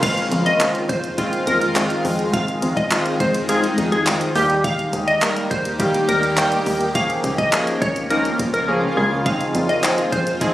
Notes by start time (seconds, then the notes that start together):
0.02 D#3 G#3 C4 F4 F5, kick, closed hi-hat, crash
0.17 closed hi-hat
0.32 F2, closed hi-hat
0.46 D#5, closed hi-hat
0.60 D#3 G#3 C4 F4, clap, closed hi-hat
0.75 closed hi-hat
0.89 F2 C5, kick, closed hi-hat
1.04 closed hi-hat
1.18 D#3 G#3 C4 F4, kick, closed hi-hat
1.33 closed hi-hat
1.47 F2 A#4, closed hi-hat
1.61 closed hi-hat
1.75 D#3 G#3 C4 F4, clap, closed hi-hat
1.90 closed hi-hat
2.05 F2, open hi-hat
2.19 closed hi-hat
2.33 D#3 G#3 C4 D#4 F4 F5, kick, closed hi-hat
2.48 closed hi-hat
2.62 F2, closed hi-hat
2.77 D#5, kick, closed hi-hat
2.91 D#3 G#3 C4 F4, clap, closed hi-hat
3.06 closed hi-hat
3.20 F2 C5, kick, closed hi-hat
3.34 closed hi-hat
3.49 D#3 G#3 C4 F4 G#4, closed hi-hat
3.64 closed hi-hat
3.78 F2, closed hi-hat
3.92 G#4, closed hi-hat
4.06 D#3 G#3 C4 F4, clap, closed hi-hat
4.21 closed hi-hat
4.35 D#2 D#3 G3 A#3 G4, open hi-hat
4.50 closed hi-hat
4.64 F5, kick, closed hi-hat
4.79 closed hi-hat
4.93 D#2, closed hi-hat
5.08 D#5, closed hi-hat
5.22 D#3 G3 A#3 A#4, clap, closed hi-hat
5.36 closed hi-hat
5.51 D#2 C5, kick, closed hi-hat
5.65 closed hi-hat
5.79 D#3 G3 A#3 G4, kick, closed hi-hat
5.94 closed hi-hat
6.08 D#2 A#4, closed hi-hat
6.23 closed hi-hat
6.37 D#3 G3 A#3 G4, clap, closed hi-hat
6.52 closed hi-hat
6.66 D#2, open hi-hat
6.81 closed hi-hat
6.95 C#3 F3 A#3 C#4 F4 G#4 F5, kick, closed hi-hat
7.10 closed hi-hat
7.24 C#2, closed hi-hat
7.38 D#5, kick, closed hi-hat
7.52 F3 A#3 C#4 G#4, clap, closed hi-hat
7.67 closed hi-hat
7.82 C#2 C#5, kick, closed hi-hat
7.96 closed hi-hat
8.10 F3 A#3 C#4 D#4 A#4, closed hi-hat
8.25 closed hi-hat
8.39 C#2, kick, closed hi-hat
8.54 A#4, closed hi-hat
8.68 F3 A#3 C#4 G#4
8.97 C#2 G#4
9.26 D#3 F3 G#3 C4 D#4 G#4 F5, kick, closed hi-hat
9.41 closed hi-hat
9.55 F2, closed hi-hat
9.69 D#5, closed hi-hat
9.83 F3 C4 D#4 G#4, clap, closed hi-hat
9.98 closed hi-hat
10.12 F2 C5, kick, closed hi-hat
10.27 closed hi-hat
10.41 F3 C4 D#4 G#4, kick, closed hi-hat